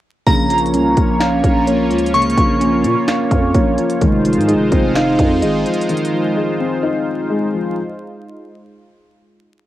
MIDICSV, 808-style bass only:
0, 0, Header, 1, 2, 480
1, 0, Start_track
1, 0, Key_signature, -4, "minor"
1, 0, Tempo, 468750
1, 273, Time_signature, 4, 2, 24, 8
1, 9899, End_track
2, 0, Start_track
2, 0, Title_t, "808-style bass"
2, 0, Program_c, 0, 38
2, 273, Note_on_c, 0, 34, 106
2, 752, Note_on_c, 0, 36, 101
2, 767, Note_off_c, 0, 34, 0
2, 980, Note_off_c, 0, 36, 0
2, 993, Note_on_c, 0, 34, 105
2, 1454, Note_off_c, 0, 34, 0
2, 1472, Note_on_c, 0, 34, 106
2, 1952, Note_on_c, 0, 37, 101
2, 1967, Note_off_c, 0, 34, 0
2, 2408, Note_off_c, 0, 37, 0
2, 2432, Note_on_c, 0, 34, 109
2, 2911, Note_on_c, 0, 46, 102
2, 2926, Note_off_c, 0, 34, 0
2, 3026, Note_off_c, 0, 46, 0
2, 3391, Note_on_c, 0, 41, 104
2, 3622, Note_off_c, 0, 41, 0
2, 3633, Note_on_c, 0, 34, 107
2, 3863, Note_off_c, 0, 34, 0
2, 4112, Note_on_c, 0, 29, 107
2, 4472, Note_on_c, 0, 44, 99
2, 4487, Note_off_c, 0, 29, 0
2, 4652, Note_on_c, 0, 29, 103
2, 4667, Note_off_c, 0, 44, 0
2, 4823, Note_off_c, 0, 29, 0
2, 4833, Note_on_c, 0, 29, 106
2, 5294, Note_off_c, 0, 29, 0
2, 5312, Note_on_c, 0, 41, 106
2, 5552, Note_on_c, 0, 32, 101
2, 5568, Note_off_c, 0, 41, 0
2, 5781, Note_off_c, 0, 32, 0
2, 9899, End_track
0, 0, End_of_file